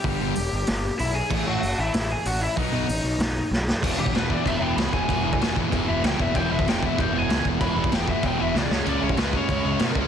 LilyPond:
<<
  \new Staff \with { instrumentName = "Lead electric guitar" } { \time 4/4 \key e \major \tempo 4 = 191 <g' g''>2. <e' e''>8 <gis' gis''>8~ | <gis' gis''>8 <fis' fis''>4 <e' e''>4 <gis' gis''>8 <fis' fis''>8 <e' e''>8 | <dis' dis''>2. r4 | r8 g'8 b'8 d''8 e''8 g''8 b''8 gis''8~ |
gis''4. r4 e''8 g''8 e''8 | g''8 e''8 g''8 e''8 g''8 gis''4 r8 | b''4 g''8 e''8 g''8 e''8 d''8 cis''8 | d''8 cis''8 b'8 cis''2 r8 | }
  \new Staff \with { instrumentName = "Distorted electric guitar" } { \clef bass \time 4/4 \key e \major r1 | r1 | r1 | r1 |
r1 | r1 | r1 | <cis gis cis'>2~ <cis gis cis'>8 <cis gis cis'>8 <cis gis cis'>4 | }
  \new Staff \with { instrumentName = "Distorted electric guitar" } { \clef bass \time 4/4 \key e \major <g, d g>8 <g, d g>8 r2. | <a, e a>8 <a, e a>8 r2. | <b, fis b>8 <b, fis b>8 r2. | <e, b, e>8 <e, b, e>8 <e, b, e>8 <e, b, e>8 <e, b, e>8 <e, b, e>8 <e, b, e>8 <e, b, e>8 |
<e, b, e>8 <e, b, e>8 <e, b, e>8 <e, b, e>8 <e, b, e>8 <e, b, e>8 <e, b, e>8 <e, b, e>8 | <e, b, e>8 <e, b, e>8 <e, b, e>8 <e, b, e>8 <e, b, e>8 <e, b, e>8 <e, b, e>8 <e, b, e>8 | <e, b, e>8 <e, b, e>8 <e, b, e>8 <e, b, e>8 <e, b, e>8 <e, b, e>8 <e, b, e>8 <cis gis cis'>8 | <cis gis cis'>8 <cis gis cis'>8 <cis gis cis'>8 <cis gis cis'>8 <cis gis cis'>8 <cis gis cis'>8 <cis gis cis'>8 <cis gis cis'>8 | }
  \new Staff \with { instrumentName = "Overdriven electric guitar" } { \clef bass \time 4/4 \key e \major <g, d g>8 <g, d g>8 r2. | <a, e a>8 <a, e a>8 r2. | <b, fis b>8 <b, fis b>8 r2. | <e, b, e>8 <e, b, e>8 <e, b, e>8 <e, b, e>8 <e, b, e>8 <e, b, e>8 <e, b, e>8 <e, b, e>8 |
<e, b, e>8 <e, b, e>8 <e, b, e>8 <e, b, e>8 <e, b, e>8 <e, b, e>8 <e, b, e>8 <e, b, e>8 | <e, b, e>8 <e, b, e>8 <e, b, e>8 <e, b, e>8 <e, b, e>8 <e, b, e>8 <e, b, e>8 <e, b, e>8 | <e, b, e>8 <e, b, e>8 <e, b, e>8 <e, b, e>8 <e, b, e>8 <e, b, e>8 <e, b, e>8 <cis gis cis'>8 | <cis gis cis'>8 <cis gis cis'>8 <cis gis cis'>8 <cis gis cis'>8 <cis gis cis'>8 <cis gis cis'>8 <cis gis cis'>8 <cis gis cis'>8 | }
  \new Staff \with { instrumentName = "Picked electric bass" } { \clef bass \time 4/4 \key e \major g,,8 g,,8 e,,8 g,,8 g,,4 b,,4 | a,,8 a,,8 fis,,8 a,,8 a,,4 a,,4 | b,,8 b,,8 a,,8 b,,8 b,,4 b,,4 | e,,8 e,,8 e,,4 e,,8 e,,8 cis,8 e,,8 |
e,,8 e,,8 e,,4 e,,8 e,,8 cis,8 e,,8 | e,,8 e,,8 e,,4 e,,8 e,,8 cis,8 e,,8 | e,,8 e,,8 e,,4 e,,8 e,,8 cis,8 cis,8 | cis,8 cis,8 cis,4 cis,8 cis,8 b,8 cis,8 | }
  \new DrumStaff \with { instrumentName = "Drums" } \drummode { \time 4/4 bd4 hho4 <hho sn>4 hho4 | <cymc bd>4 hho4 <hho sn>4 hho4 | <hho bd>4 hho4 <hho sn>4 sn8 sn8 | <cymc bd>8. bd16 <cymc sn>8 bd8 <cymc bd>4 <cymc sn>8 bd8 |
<cymc bd>8. bd16 <cymc sn>8 bd8 <cymc bd>4 <cymc sn>8 bd8 | <cymc bd>8. bd16 <cymc sn>8 bd8 <cymc bd>4 <cymc sn>8 bd8 | <cymc bd>8. bd16 <cymc sn>8 bd8 <cymc bd>4 sn8 sn8 | cymc8. bd16 <cymc sn>8 bd8 <cymc bd>4 <cymc sn>8 bd8 | }
>>